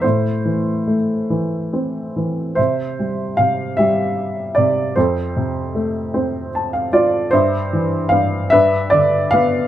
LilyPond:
<<
  \new Staff \with { instrumentName = "Upright piano" } { \time 6/8 \key a \minor \tempo 4. = 50 << { c''4 r2 | \key c \major c''4 f''8 e''4 d''8 | c''2 a''16 f''16 d''8 | c''4 f''8 e''8 d''8 f''8 | } \\ { r2. | e''4. r4. | a'2 r4 | e''4. b'4. | } >> }
  \new Staff \with { instrumentName = "Upright piano" } { \clef bass \time 6/8 \key a \minor a,8 e8 a8 e8 c'8 e8 | \key c \major c8 g8 c8 g4 c8 | f,8 c8 a8 c'4 f'8 | g,8 e8 g,8 g,8 d8 b8 | }
>>